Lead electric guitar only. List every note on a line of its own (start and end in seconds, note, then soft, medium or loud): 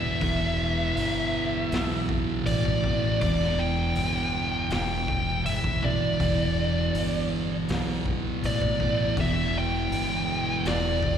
0.00 2.05 E5 medium
2.46 3.20 D5 medium
3.21 3.60 D5 medium
3.59 4.72 G5 loud
4.73 5.43 G5 loud
5.46 5.84 E5 medium
5.84 7.28 D5 medium
8.46 9.15 D5 medium
9.21 9.57 E5 medium
9.58 10.71 G5 loud
10.67 11.18 D5 loud